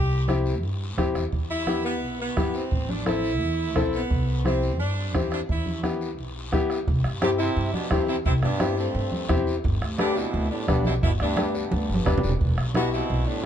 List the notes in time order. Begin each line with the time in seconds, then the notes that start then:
Already playing: C2 G4
0.28 C4 E4 G4, bombo rim, high conga, short guiro
0.46 short guiro
0.63 G2, long guiro
0.97 F#2 C4 E4 G4, bombo low, bombo rim, high conga, short guiro
1.15 E2, bombo rim, short guiro
1.32 E2, bombo low, long guiro
1.50 E4
1.67 B3 E4 G4, bombo rim, high conga, short guiro
1.84 B3, short guiro
2.02 B1, long guiro
2.20 B3
2.37 G2 B3 E4 G4, bombo low, bombo rim, high conga, short guiro
2.54 C4, short guiro
2.71 A1, bombo low, long guiro
2.89 D4, high conga
3.06 C4 E4 A4, bombo rim, high conga, short guiro
3.24 short guiro
3.40 E2, long guiro
3.75 B1 C4 E4 A4, bombo low, bombo rim, high conga, short guiro
3.93 B3, short guiro
4.10 C2, bombo low, long guiro
4.45 C4 E4 G4, bombo rim, high conga, short guiro
4.63 short guiro
4.80 G2 D4, long guiro
5.14 E2 C4 E4 G4, bombo low, bombo rim, high conga, short guiro
5.32 D4, bombo rim, short guiro
5.49 E2 E4, bombo low, long guiro
5.66 high conga
5.83 B3 E4 G4, bombo rim, high conga, short guiro
6.01 short guiro
6.18 B1, long guiro
6.52 D2 B3 E4 G4, bombo low, bombo rim, high conga, short guiro
6.70 bombo rim, short guiro
6.87 C2, bombo low, high conga, long guiro
7.04 G2, bombo rim
7.22 C3 C4 E4 G4, bombo rim, high conga, short guiro
7.39 C3 C4 E4, short guiro
7.56 G2, high conga, long guiro
7.74 B2 B3 D4, high conga
7.90 E2 G2 G3 C4 E4 G4, bombo low, bombo rim, high conga, short guiro
8.08 C3 C4 E4, short guiro
8.25 C2 C3 C4 E4, bombo low, high conga, long guiro
8.43 G2 B3 D4, bombo rim, low conga
8.60 C4 E4 G4, bombo rim, high conga, short guiro
8.77 G2 A3 C4, short guiro
8.95 G2, high conga, long guiro
9.12 high conga
9.29 E2 C4 E4 G4, bombo low, bombo rim, high conga, low conga, short guiro
9.47 short guiro
9.64 G1, bombo low, high conga, long guiro
9.82 D2, bombo rim
9.98 D3 D4 G4 B4, bombo rim, high conga, short guiro
10.17 B2 C4 E4, short guiro
10.33 D2, high conga, long guiro
10.50 A2 B3 D4
10.68 B1 G2 G3 B3 D4 G4 B4, bombo low, bombo rim, high conga, short guiro
10.85 B2 C4 E4, high conga, short guiro
11.02 G1 B2 B3 E4, bombo low, high conga, long guiro
11.20 D2 G2 B3 D4, bombo rim
11.37 D4 G4 B4, bombo rim, high conga, short guiro
11.54 G2 G3 B3, short guiro
11.71 D2, high conga, long guiro
11.89 G1
11.94 high conga
12.06 F#1 D4 G4 B4, bombo low, bombo rim, low conga, short guiro
12.18 low conga
12.23 E1, short guiro
12.29 low conga
12.40 E1, bombo low, high conga, long guiro
12.58 B1, bombo rim
12.75 B2 B3 E4 F#4 G4 B4, bombo rim, high conga, short guiro
12.93 B2 C4 E4, short guiro
13.09 B1, high conga, long guiro
13.27 A2 B3 D4